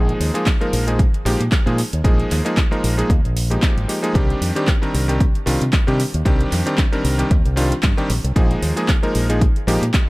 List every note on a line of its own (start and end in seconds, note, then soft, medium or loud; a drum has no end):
0.00 0.11 A#1 medium
0.00 0.31 F3 medium
0.00 0.31 G#3 medium
0.00 0.31 A#3 medium
0.00 0.32 D#4 medium
0.00 0.32 G#4 loud
0.09 closed hi-hat soft
0.20 0.29 D#2 medium
0.20 open hi-hat loud
0.34 0.46 F3 medium
0.34 0.46 G#3 medium
0.34 0.47 A#3 medium
0.34 0.47 D#4 medium
0.34 0.47 G#4 loud
0.34 closed hi-hat soft
0.46 kick loud
0.46 clap loud
0.46 closed hi-hat soft
0.60 0.84 F3 medium
0.60 0.84 G#3 medium
0.60 0.84 A#3 medium
0.60 0.84 D#4 medium
0.60 0.84 A#4 loud
0.60 closed hi-hat soft
0.73 1.05 A#1 medium
0.73 open hi-hat loud
0.87 0.99 F3 medium
0.87 0.99 G#3 medium
0.87 0.99 A#3 medium
0.87 1.00 D#4 medium
0.87 1.00 G#4 medium
0.87 closed hi-hat medium
0.99 kick loud
0.99 closed hi-hat soft
1.14 closed hi-hat soft
1.25 1.35 A#1 loud
1.25 1.40 F3 medium
1.25 1.40 G#3 medium
1.25 1.40 A#3 medium
1.25 1.40 D#4 medium
1.25 1.41 G4 loud
1.25 open hi-hat loud
1.40 1.48 A#2 medium
1.40 closed hi-hat soft
1.52 kick loud
1.52 clap loud
1.52 closed hi-hat medium
1.66 1.82 A#2 medium
1.66 1.78 F3 medium
1.66 1.78 G#3 medium
1.66 1.78 A#3 medium
1.66 1.79 D#4 medium
1.66 1.79 G#4 loud
1.66 closed hi-hat soft
1.78 open hi-hat loud
1.93 2.00 D#2 medium
1.93 closed hi-hat soft
2.04 2.22 A#1 loud
2.04 2.42 F3 medium
2.04 2.42 G#3 medium
2.04 2.42 A#3 medium
2.04 2.42 D#4 medium
2.04 2.42 G#4 loud
2.04 kick loud
2.04 closed hi-hat soft
2.20 closed hi-hat soft
2.31 2.40 D#2 medium
2.31 clap soft
2.31 open hi-hat loud
2.45 2.57 F3 medium
2.45 2.57 G#3 medium
2.45 2.57 A#3 medium
2.45 2.57 D#4 medium
2.45 2.57 G#4 loud
2.45 closed hi-hat soft
2.57 kick loud
2.57 clap loud
2.57 closed hi-hat soft
2.71 2.94 F3 medium
2.71 2.94 G#3 medium
2.71 2.94 A#3 medium
2.71 2.95 D#4 medium
2.71 2.95 A#4 loud
2.71 closed hi-hat soft
2.84 3.01 A#1 medium
2.84 open hi-hat loud
2.97 3.10 F3 medium
2.97 3.10 G#3 medium
2.97 3.10 A#3 medium
2.97 3.10 D#4 medium
2.97 3.10 G#4 medium
2.97 closed hi-hat soft
3.10 3.19 D#2 medium
3.10 kick loud
3.10 closed hi-hat soft
3.25 3.56 A#1 loud
3.25 closed hi-hat soft
3.37 open hi-hat loud
3.50 3.86 F3 medium
3.50 3.86 G#3 medium
3.50 3.86 A#3 medium
3.50 3.86 D#4 medium
3.50 3.86 G4 medium
3.50 closed hi-hat soft
3.63 kick loud
3.63 clap loud
3.63 closed hi-hat medium
3.77 3.84 G#1 medium
3.77 closed hi-hat soft
3.88 4.00 F3 medium
3.88 4.00 G#3 medium
3.88 4.00 A#3 medium
3.88 4.00 D#4 medium
3.88 4.00 G4 medium
3.88 open hi-hat loud
4.02 4.13 F3 medium
4.02 4.13 G#3 medium
4.02 4.13 A#3 medium
4.02 4.13 D#4 medium
4.02 4.13 G#4 loud
4.02 closed hi-hat soft
4.14 4.32 C2 loud
4.14 4.52 D#3 medium
4.14 4.52 G3 medium
4.14 4.52 C4 medium
4.14 4.52 D4 medium
4.14 4.52 G4 loud
4.14 kick loud
4.14 closed hi-hat soft
4.30 closed hi-hat soft
4.41 4.50 F2 medium
4.41 open hi-hat loud
4.55 4.68 D#3 medium
4.55 4.68 G3 medium
4.55 4.68 C4 medium
4.55 4.68 D4 medium
4.55 4.68 G4 loud
4.55 closed hi-hat soft
4.68 kick loud
4.68 clap loud
4.68 closed hi-hat soft
4.82 5.05 D#3 medium
4.82 5.05 G3 medium
4.82 5.05 C4 medium
4.82 5.05 D4 medium
4.82 5.05 A#4 loud
4.82 closed hi-hat soft
4.94 5.26 C2 medium
4.94 open hi-hat loud
5.08 5.20 D#3 medium
5.08 5.20 G3 medium
5.08 5.21 C4 medium
5.08 5.21 D4 medium
5.08 5.21 G4 medium
5.08 closed hi-hat soft
5.20 kick loud
5.20 closed hi-hat soft
5.35 closed hi-hat soft
5.46 5.56 C2 medium
5.46 5.61 D#3 medium
5.46 5.61 G3 medium
5.46 5.61 C4 medium
5.46 5.61 D4 medium
5.46 5.61 F4 loud
5.46 open hi-hat loud
5.61 5.69 C3 medium
5.61 closed hi-hat soft
5.73 kick loud
5.73 clap loud
5.73 closed hi-hat medium
5.87 6.03 C3 medium
5.87 5.99 D#3 medium
5.87 5.99 G3 medium
5.87 6.00 C4 medium
5.87 6.00 D4 medium
5.87 6.00 G4 loud
5.87 closed hi-hat soft
6.00 open hi-hat loud
6.14 6.21 D#2 medium
6.14 closed hi-hat soft
6.25 6.43 C2 medium
6.25 6.63 D#3 medium
6.25 6.63 G3 medium
6.25 6.63 C4 medium
6.25 6.63 D4 medium
6.25 6.63 G4 loud
6.25 kick loud
6.25 closed hi-hat medium
6.41 closed hi-hat soft
6.52 6.61 F2 medium
6.52 clap soft
6.52 open hi-hat loud
6.66 6.78 D#3 medium
6.66 6.78 G3 medium
6.66 6.78 C4 medium
6.66 6.78 D4 medium
6.66 6.79 G4 loud
6.66 closed hi-hat medium
6.78 kick loud
6.78 clap loud
6.78 closed hi-hat medium
6.92 7.15 D#3 medium
6.92 7.15 G3 medium
6.92 7.16 C4 medium
6.92 7.16 D4 medium
6.92 7.16 A#4 loud
6.92 closed hi-hat soft
7.04 7.22 C2 medium
7.04 open hi-hat loud
7.18 7.31 D#3 medium
7.18 7.31 G3 medium
7.18 7.31 C4 medium
7.18 7.31 D4 medium
7.18 7.31 G4 medium
7.18 closed hi-hat medium
7.31 7.40 D#2 loud
7.31 kick loud
7.31 closed hi-hat soft
7.45 7.71 C2 loud
7.45 closed hi-hat soft
7.56 7.71 D#3 medium
7.56 7.72 G3 medium
7.56 7.72 C4 medium
7.56 7.72 D4 medium
7.56 7.72 F4 loud
7.56 open hi-hat loud
7.72 muted fingered electric bass stroke soft
7.72 closed hi-hat soft
7.83 7.93 G2 medium
7.83 kick loud
7.83 clap loud
7.83 closed hi-hat medium
7.97 8.10 D#3 medium
7.97 8.10 G3 medium
7.97 8.10 C4 medium
7.97 8.10 D4 medium
7.97 8.10 G4 loud
7.97 closed hi-hat soft
8.10 8.19 A#1 medium
8.10 open hi-hat loud
8.24 8.32 C2 medium
8.24 closed hi-hat medium
8.36 8.53 A#1 loud
8.36 8.73 F3 medium
8.36 8.73 G#3 medium
8.36 8.74 A#3 medium
8.36 8.74 D#4 medium
8.36 8.74 G#4 loud
8.36 kick loud
8.36 closed hi-hat medium
8.51 closed hi-hat soft
8.62 8.71 D#2 medium
8.62 open hi-hat loud
8.76 8.89 F3 medium
8.76 8.89 G#3 medium
8.76 8.89 A#3 medium
8.76 8.89 D#4 medium
8.76 8.89 G#4 loud
8.76 closed hi-hat medium
8.88 kick loud
8.88 clap loud
8.88 closed hi-hat medium
9.03 9.26 F3 medium
9.03 9.26 G#3 medium
9.03 9.26 A#3 medium
9.03 9.26 D#4 medium
9.03 9.26 A#4 loud
9.03 closed hi-hat soft
9.15 9.47 A#1 medium
9.15 open hi-hat medium
9.29 9.41 F3 medium
9.29 9.42 G#3 medium
9.29 9.42 A#3 medium
9.29 9.42 D#4 medium
9.29 9.42 G#4 medium
9.29 closed hi-hat medium
9.41 kick loud
9.41 closed hi-hat medium
9.56 closed hi-hat soft
9.67 9.77 A#1 loud
9.67 9.82 F3 medium
9.67 9.82 G#3 medium
9.67 9.83 A#3 medium
9.67 9.83 D#4 medium
9.67 9.83 G4 loud
9.67 open hi-hat loud
9.82 9.89 A#2 medium
9.82 closed hi-hat medium
9.94 kick loud
9.94 clap loud
9.94 closed hi-hat medium